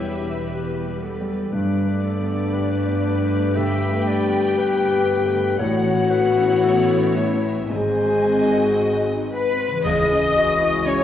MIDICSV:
0, 0, Header, 1, 12, 480
1, 0, Start_track
1, 0, Tempo, 995025
1, 737, Time_signature, 4, 2, 24, 8
1, 1219, Tempo, 1022147
1, 2659, Tempo, 1036269
1, 3139, Tempo, 1071429
1, 4579, Tempo, 1011804
1, 5146, End_track
2, 0, Start_track
2, 0, Title_t, "Violin section"
2, 0, Program_c, 0, 48
2, 0, Note_on_c, 0, 76, 75
2, 499, Note_off_c, 0, 76, 0
2, 737, Note_on_c, 0, 74, 80
2, 1689, Note_off_c, 0, 74, 0
2, 1704, Note_on_c, 0, 79, 102
2, 2652, Note_on_c, 0, 78, 91
2, 2658, Note_off_c, 0, 79, 0
2, 3359, Note_off_c, 0, 78, 0
2, 3377, Note_on_c, 0, 76, 67
2, 3617, Note_on_c, 0, 80, 87
2, 3618, Note_off_c, 0, 76, 0
2, 4343, Note_off_c, 0, 80, 0
2, 4582, Note_on_c, 0, 68, 70
2, 4584, Note_on_c, 0, 64, 76
2, 5146, Note_off_c, 0, 64, 0
2, 5146, Note_off_c, 0, 68, 0
2, 5146, End_track
3, 0, Start_track
3, 0, Title_t, "Oboe"
3, 0, Program_c, 1, 68
3, 4344, Note_on_c, 1, 71, 68
3, 4562, Note_off_c, 1, 71, 0
3, 4576, Note_on_c, 1, 75, 98
3, 5056, Note_on_c, 1, 73, 78
3, 5063, Note_off_c, 1, 75, 0
3, 5146, Note_off_c, 1, 73, 0
3, 5146, End_track
4, 0, Start_track
4, 0, Title_t, "Violin section"
4, 0, Program_c, 2, 48
4, 0, Note_on_c, 2, 71, 60
4, 717, Note_off_c, 2, 71, 0
4, 735, Note_on_c, 2, 71, 79
4, 2639, Note_off_c, 2, 71, 0
4, 2658, Note_on_c, 2, 73, 82
4, 3600, Note_off_c, 2, 73, 0
4, 3615, Note_on_c, 2, 75, 70
4, 4324, Note_off_c, 2, 75, 0
4, 4342, Note_on_c, 2, 71, 74
4, 4561, Note_off_c, 2, 71, 0
4, 4575, Note_on_c, 2, 75, 92
4, 5057, Note_off_c, 2, 75, 0
4, 5058, Note_on_c, 2, 73, 73
4, 5146, Note_off_c, 2, 73, 0
4, 5146, End_track
5, 0, Start_track
5, 0, Title_t, "Clarinet"
5, 0, Program_c, 3, 71
5, 0, Note_on_c, 3, 73, 68
5, 127, Note_off_c, 3, 73, 0
5, 261, Note_on_c, 3, 71, 54
5, 498, Note_on_c, 3, 69, 59
5, 505, Note_off_c, 3, 71, 0
5, 735, Note_on_c, 3, 71, 64
5, 742, Note_off_c, 3, 69, 0
5, 976, Note_on_c, 3, 69, 66
5, 984, Note_off_c, 3, 71, 0
5, 1222, Note_on_c, 3, 71, 77
5, 1229, Note_off_c, 3, 69, 0
5, 1706, Note_on_c, 3, 76, 89
5, 1713, Note_off_c, 3, 71, 0
5, 1948, Note_on_c, 3, 74, 74
5, 1955, Note_off_c, 3, 76, 0
5, 2178, Note_off_c, 3, 74, 0
5, 2181, Note_on_c, 3, 71, 85
5, 2650, Note_off_c, 3, 71, 0
5, 2657, Note_on_c, 3, 73, 80
5, 2896, Note_on_c, 3, 71, 81
5, 2903, Note_off_c, 3, 73, 0
5, 3141, Note_on_c, 3, 69, 71
5, 3148, Note_off_c, 3, 71, 0
5, 3378, Note_on_c, 3, 73, 71
5, 3385, Note_off_c, 3, 69, 0
5, 3534, Note_off_c, 3, 73, 0
5, 3618, Note_on_c, 3, 72, 69
5, 4326, Note_off_c, 3, 72, 0
5, 4580, Note_on_c, 3, 68, 85
5, 4825, Note_on_c, 3, 66, 85
5, 4832, Note_off_c, 3, 68, 0
5, 5146, Note_off_c, 3, 66, 0
5, 5146, End_track
6, 0, Start_track
6, 0, Title_t, "Harp"
6, 0, Program_c, 4, 46
6, 0, Note_on_c, 4, 52, 54
6, 0, Note_on_c, 4, 59, 40
6, 0, Note_on_c, 4, 64, 39
6, 0, Note_on_c, 4, 67, 43
6, 0, Note_on_c, 4, 71, 44
6, 0, Note_on_c, 4, 83, 56
6, 10, Note_on_c, 4, 79, 51
6, 125, Note_off_c, 4, 83, 0
6, 131, Note_on_c, 4, 83, 57
6, 246, Note_off_c, 4, 71, 0
6, 252, Note_on_c, 4, 71, 54
6, 369, Note_off_c, 4, 67, 0
6, 374, Note_on_c, 4, 67, 44
6, 488, Note_off_c, 4, 59, 0
6, 494, Note_on_c, 4, 59, 56
6, 610, Note_off_c, 4, 64, 0
6, 616, Note_on_c, 4, 64, 57
6, 682, Note_off_c, 4, 52, 0
6, 736, Note_on_c, 4, 43, 68
6, 755, Note_off_c, 4, 64, 0
6, 855, Note_on_c, 4, 50, 53
6, 972, Note_off_c, 4, 59, 0
6, 978, Note_on_c, 4, 59, 59
6, 1098, Note_on_c, 4, 69, 53
6, 1215, Note_off_c, 4, 71, 0
6, 1221, Note_on_c, 4, 71, 62
6, 1335, Note_off_c, 4, 69, 0
6, 1341, Note_on_c, 4, 69, 65
6, 1465, Note_on_c, 4, 81, 57
6, 1581, Note_off_c, 4, 83, 0
6, 1587, Note_on_c, 4, 83, 58
6, 1704, Note_off_c, 4, 81, 0
6, 1710, Note_on_c, 4, 81, 71
6, 1824, Note_off_c, 4, 83, 0
6, 1830, Note_on_c, 4, 83, 67
6, 1874, Note_off_c, 4, 79, 0
6, 1944, Note_off_c, 4, 81, 0
6, 1950, Note_on_c, 4, 81, 65
6, 2059, Note_off_c, 4, 83, 0
6, 2064, Note_on_c, 4, 83, 70
6, 2177, Note_off_c, 4, 71, 0
6, 2183, Note_on_c, 4, 71, 69
6, 2228, Note_off_c, 4, 67, 0
6, 2295, Note_off_c, 4, 69, 0
6, 2300, Note_on_c, 4, 69, 56
6, 2416, Note_off_c, 4, 59, 0
6, 2422, Note_on_c, 4, 59, 66
6, 2534, Note_off_c, 4, 50, 0
6, 2539, Note_on_c, 4, 50, 61
6, 2580, Note_off_c, 4, 43, 0
6, 2658, Note_on_c, 4, 45, 82
6, 2679, Note_off_c, 4, 50, 0
6, 2776, Note_on_c, 4, 52, 61
6, 2896, Note_on_c, 4, 61, 56
6, 3009, Note_off_c, 4, 69, 0
6, 3015, Note_on_c, 4, 69, 50
6, 3131, Note_off_c, 4, 71, 0
6, 3137, Note_on_c, 4, 71, 55
6, 3257, Note_on_c, 4, 73, 58
6, 3369, Note_off_c, 4, 81, 0
6, 3375, Note_on_c, 4, 81, 54
6, 3492, Note_off_c, 4, 83, 0
6, 3497, Note_on_c, 4, 83, 57
6, 3620, Note_on_c, 4, 44, 68
6, 3636, Note_off_c, 4, 52, 0
6, 3636, Note_off_c, 4, 69, 0
6, 3637, Note_off_c, 4, 45, 0
6, 3637, Note_off_c, 4, 61, 0
6, 3637, Note_off_c, 4, 71, 0
6, 3637, Note_off_c, 4, 81, 0
6, 3638, Note_off_c, 4, 73, 0
6, 3638, Note_off_c, 4, 83, 0
6, 3639, Note_off_c, 4, 59, 0
6, 3740, Note_on_c, 4, 51, 49
6, 3861, Note_on_c, 4, 63, 47
6, 3986, Note_on_c, 4, 66, 48
6, 4106, Note_on_c, 4, 60, 46
6, 4227, Note_on_c, 4, 75, 43
6, 4348, Note_on_c, 4, 78, 51
6, 4465, Note_on_c, 4, 84, 51
6, 4502, Note_on_c, 4, 49, 71
6, 4521, Note_on_c, 4, 52, 55
6, 4541, Note_on_c, 4, 68, 53
6, 4561, Note_on_c, 4, 73, 58
6, 4598, Note_off_c, 4, 51, 0
6, 4598, Note_off_c, 4, 63, 0
6, 4599, Note_off_c, 4, 44, 0
6, 4599, Note_off_c, 4, 60, 0
6, 4599, Note_off_c, 4, 84, 0
6, 4600, Note_off_c, 4, 66, 0
6, 4600, Note_off_c, 4, 75, 0
6, 4600, Note_off_c, 4, 78, 0
6, 5146, Note_off_c, 4, 49, 0
6, 5146, Note_off_c, 4, 52, 0
6, 5146, Note_off_c, 4, 68, 0
6, 5146, Note_off_c, 4, 73, 0
6, 5146, End_track
7, 0, Start_track
7, 0, Title_t, "Viola section"
7, 0, Program_c, 5, 48
7, 0, Note_on_c, 5, 55, 57
7, 0, Note_on_c, 5, 67, 60
7, 716, Note_off_c, 5, 67, 0
7, 717, Note_off_c, 5, 55, 0
7, 739, Note_on_c, 5, 57, 71
7, 739, Note_on_c, 5, 67, 74
7, 2642, Note_off_c, 5, 57, 0
7, 2642, Note_off_c, 5, 67, 0
7, 2660, Note_on_c, 5, 59, 85
7, 2660, Note_on_c, 5, 64, 90
7, 3601, Note_off_c, 5, 59, 0
7, 3601, Note_off_c, 5, 64, 0
7, 3620, Note_on_c, 5, 60, 70
7, 3620, Note_on_c, 5, 66, 72
7, 4327, Note_off_c, 5, 60, 0
7, 4327, Note_off_c, 5, 66, 0
7, 4348, Note_on_c, 5, 71, 74
7, 4564, Note_off_c, 5, 71, 0
7, 4582, Note_on_c, 5, 75, 96
7, 5061, Note_off_c, 5, 75, 0
7, 5062, Note_on_c, 5, 73, 70
7, 5146, Note_off_c, 5, 73, 0
7, 5146, End_track
8, 0, Start_track
8, 0, Title_t, "French horn section"
8, 0, Program_c, 6, 60
8, 0, Note_on_c, 6, 64, 85
8, 496, Note_off_c, 6, 64, 0
8, 736, Note_on_c, 6, 62, 91
8, 1688, Note_off_c, 6, 62, 0
8, 1704, Note_on_c, 6, 67, 121
8, 2658, Note_off_c, 6, 67, 0
8, 2658, Note_on_c, 6, 66, 118
8, 3361, Note_off_c, 6, 66, 0
8, 3373, Note_on_c, 6, 64, 93
8, 3617, Note_off_c, 6, 64, 0
8, 3617, Note_on_c, 6, 68, 100
8, 4343, Note_off_c, 6, 68, 0
8, 4580, Note_on_c, 6, 68, 70
8, 4582, Note_on_c, 6, 52, 75
8, 5146, Note_off_c, 6, 52, 0
8, 5146, Note_off_c, 6, 68, 0
8, 5146, End_track
9, 0, Start_track
9, 0, Title_t, "Grand piano"
9, 0, Program_c, 7, 0
9, 0, Control_c, 7, 64, 127
9, 0, Note_on_c, 7, 47, 53
9, 0, Note_on_c, 7, 55, 42
9, 0, Note_on_c, 7, 59, 44
9, 0, Note_on_c, 7, 67, 43
9, 102, Note_off_c, 7, 59, 0
9, 102, Note_on_c, 7, 59, 45
9, 199, Note_off_c, 7, 55, 0
9, 258, Note_off_c, 7, 67, 0
9, 258, Note_on_c, 7, 67, 47
9, 356, Note_off_c, 7, 59, 0
9, 418, Note_on_c, 7, 59, 51
9, 513, Note_off_c, 7, 67, 0
9, 582, Note_on_c, 7, 55, 52
9, 673, Note_off_c, 7, 59, 0
9, 737, Note_on_c, 7, 43, 75
9, 739, Note_off_c, 7, 55, 0
9, 746, Control_c, 7, 64, 0
9, 747, Note_off_c, 7, 47, 0
9, 811, Control_c, 7, 64, 127
9, 899, Note_on_c, 7, 57, 47
9, 1059, Note_on_c, 7, 59, 54
9, 1155, Note_off_c, 7, 57, 0
9, 1221, Note_on_c, 7, 67, 60
9, 1316, Note_off_c, 7, 59, 0
9, 1375, Note_on_c, 7, 59, 57
9, 1479, Note_off_c, 7, 67, 0
9, 1543, Note_on_c, 7, 57, 50
9, 1640, Note_off_c, 7, 59, 0
9, 1689, Note_off_c, 7, 43, 0
9, 1709, Note_on_c, 7, 50, 68
9, 1803, Note_off_c, 7, 57, 0
9, 1870, Note_on_c, 7, 57, 52
9, 1963, Note_off_c, 7, 50, 0
9, 2029, Note_on_c, 7, 59, 66
9, 2120, Note_off_c, 7, 57, 0
9, 2186, Note_on_c, 7, 67, 57
9, 2278, Note_off_c, 7, 59, 0
9, 2343, Note_on_c, 7, 59, 63
9, 2437, Note_off_c, 7, 67, 0
9, 2499, Note_on_c, 7, 57, 62
9, 2597, Note_off_c, 7, 59, 0
9, 2658, Note_on_c, 7, 45, 82
9, 2659, Note_off_c, 7, 57, 0
9, 2669, Control_c, 7, 64, 0
9, 2737, Control_c, 7, 64, 127
9, 2817, Note_on_c, 7, 59, 51
9, 2975, Note_on_c, 7, 61, 48
9, 3074, Note_off_c, 7, 59, 0
9, 3136, Note_on_c, 7, 64, 53
9, 3232, Note_off_c, 7, 61, 0
9, 3296, Note_on_c, 7, 61, 53
9, 3391, Note_off_c, 7, 64, 0
9, 3453, Note_on_c, 7, 59, 45
9, 3553, Note_off_c, 7, 61, 0
9, 3600, Note_off_c, 7, 45, 0
9, 3617, Note_off_c, 7, 59, 0
9, 3617, Note_on_c, 7, 44, 63
9, 3628, Control_c, 7, 64, 0
9, 3695, Control_c, 7, 64, 127
9, 3778, Note_on_c, 7, 60, 39
9, 3943, Note_on_c, 7, 63, 46
9, 4037, Note_off_c, 7, 60, 0
9, 4108, Note_on_c, 7, 66, 48
9, 4200, Note_off_c, 7, 63, 0
9, 4272, Note_on_c, 7, 63, 40
9, 4363, Note_off_c, 7, 66, 0
9, 4431, Note_on_c, 7, 60, 40
9, 4521, Note_off_c, 7, 63, 0
9, 4560, Note_off_c, 7, 44, 0
9, 4582, Note_off_c, 7, 60, 0
9, 4586, Control_c, 7, 64, 0
9, 4588, Note_on_c, 7, 37, 73
9, 4675, Control_c, 7, 64, 127
9, 4708, Note_on_c, 7, 61, 53
9, 4825, Note_on_c, 7, 68, 57
9, 4896, Note_off_c, 7, 61, 0
9, 4948, Note_on_c, 7, 64, 60
9, 5014, Note_off_c, 7, 68, 0
9, 5062, Note_on_c, 7, 61, 57
9, 5134, Note_off_c, 7, 64, 0
9, 5146, Note_off_c, 7, 37, 0
9, 5146, Note_off_c, 7, 61, 0
9, 5146, End_track
10, 0, Start_track
10, 0, Title_t, "Cello section"
10, 0, Program_c, 8, 48
10, 0, Note_on_c, 8, 40, 51
10, 717, Note_off_c, 8, 40, 0
10, 735, Note_on_c, 8, 43, 68
10, 2640, Note_off_c, 8, 43, 0
10, 2656, Note_on_c, 8, 45, 75
10, 3599, Note_off_c, 8, 45, 0
10, 3616, Note_on_c, 8, 44, 62
10, 4343, Note_off_c, 8, 44, 0
10, 4346, Note_on_c, 8, 71, 90
10, 4563, Note_off_c, 8, 71, 0
10, 4581, Note_on_c, 8, 75, 90
10, 5060, Note_off_c, 8, 75, 0
10, 5061, Note_on_c, 8, 73, 93
10, 5146, Note_off_c, 8, 73, 0
10, 5146, End_track
11, 0, Start_track
11, 0, Title_t, "Double bass section"
11, 0, Program_c, 10, 48
11, 0, Note_on_c, 10, 28, 55
11, 716, Note_off_c, 10, 28, 0
11, 738, Note_on_c, 10, 31, 76
11, 2641, Note_off_c, 10, 31, 0
11, 2659, Note_on_c, 10, 33, 88
11, 3600, Note_off_c, 10, 33, 0
11, 3619, Note_on_c, 10, 32, 76
11, 4488, Note_off_c, 10, 32, 0
11, 4581, Note_on_c, 10, 37, 86
11, 5146, Note_off_c, 10, 37, 0
11, 5146, End_track
12, 0, Start_track
12, 0, Title_t, "Drums"
12, 4581, Note_on_c, 9, 35, 85
12, 4581, Note_on_c, 9, 49, 77
12, 4629, Note_off_c, 9, 35, 0
12, 4629, Note_off_c, 9, 49, 0
12, 5146, End_track
0, 0, End_of_file